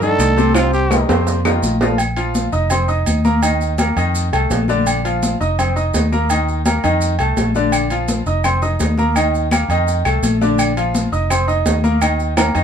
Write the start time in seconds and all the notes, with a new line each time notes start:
Already playing: G2
0.01 D#3 D4 D#4 A4, high conga, low conga, maracas
0.19 C2, high conga, high timbale, maracas
0.37 C3 C4 C5, high conga, maracas
0.54 C3 C4 F4 C5, high timbale, claves, maracas
0.73 G4, high conga, maracas
0.90 D#3 D#4 G4, high conga, low timbale, claves, maracas
1.09 F2 C3 C4 C5, high conga, low timbale, maracas
1.27 high conga, low timbale, maracas
1.45 D#3 D#4 F4, high conga, low timbale, claves, maracas
1.63 A#1, high conga, maracas
1.81 F3 F4 A4, high conga, low timbale, maracas
1.98 low agogo, maracas
2.16 F3 F4 F5, high conga, low agogo, maracas
2.35 high conga, maracas
2.52 F1 D#4 D#5 D#6, maracas
2.70 C4 C5 C6, high conga, low conga, low agogo, maracas
2.88 D#4 D#5 D#6, high conga, maracas
3.06 D#2, high conga, low agogo, maracas
3.25 A#3 A#4 A#5, high conga, maracas
3.43 D#3 D#4 D#5, low agogo, maracas
3.61 high conga, maracas
3.78 A#3 A#4 A#5, high conga, low agogo, maracas
3.96 F2 D#3 D#4 D#5, high conga, low agogo, maracas
4.15 high conga, maracas
4.33 C2 A3 A4 A5, high conga, low agogo, maracas
4.50 A#1, high conga, low timbale, low agogo, maracas
4.68 D3 D4 D5, high conga, maracas
4.87 low agogo, maracas
5.05 F3 F4 F5, high conga, low agogo, maracas
5.23 high conga, maracas
5.41 F1 D#4 D#5 D#6, high conga, maracas
5.59 C4 C5 C6, high conga, low conga, low agogo, maracas
5.76 D#4 D#5 D#6, high conga, maracas
5.94 D#2, high conga, low timbale, low agogo, maracas
6.12 A#3 A#4 A#5, high conga, maracas
6.30 D#3 D#4 D#5, high conga, low agogo, maracas
6.48 high conga, maracas
6.66 A#3 A#4 A#5, high conga, low agogo, maracas
6.84 F2 D#3 D#4 D#5, low agogo, maracas
7.01 high conga, maracas
7.19 C2 A3 A4 A5, high conga, low agogo, maracas
7.37 A#1, high conga, low timbale, low agogo, maracas
7.55 D3 D4 D5, high conga, maracas
7.72 low agogo, claves, maracas
7.90 F3 F4 F5, high conga, low agogo, maracas
8.08 high conga, maracas
8.26 F1 D#4 D#5 D#6, maracas
8.44 C4 C5 C6, high conga, low conga, low agogo, claves, maracas
8.62 D#4 D#5 D#6, high conga, low conga, maracas
8.80 D#2, high conga, low timbale, low agogo, maracas
8.98 A#3 A#4 A#5, high conga, maracas
9.15 D#3 D#4 D#5, high conga, low agogo, claves, maracas
9.34 high conga, maracas
9.51 A#3 A#4 A#5, high conga, low agogo, claves, maracas
9.69 F2 D#3 D#4 D#5, high conga, low agogo, maracas
9.87 high conga, maracas
10.05 C2 A3 A4 A5, high conga, low agogo, claves, maracas
10.23 A#1, high conga, low agogo, maracas
10.41 D3 D4 D5, high conga, maracas
10.59 high conga, low agogo, claves, maracas
10.77 F3 F4 F5, high conga, low agogo, maracas
10.95 high conga, maracas
11.12 F1 D#4 D#5 D#6, high conga, maracas
11.30 C4 C5 C6, high conga, low conga, low agogo, claves, maracas
11.48 D#4 D#5 D#6, high conga, maracas
11.66 D#2, high conga, low timbale, low agogo, maracas
11.84 A#3 A#4 A#5, high conga, maracas
12.02 D#3 D#4 D#5, high conga, low agogo, claves, maracas
12.20 high conga, maracas
12.37 A#3 A#4 A#5, high conga, high timbale, low agogo, claves, maracas
12.55 F2 D#3 D#4 D#5, high conga, low agogo, maracas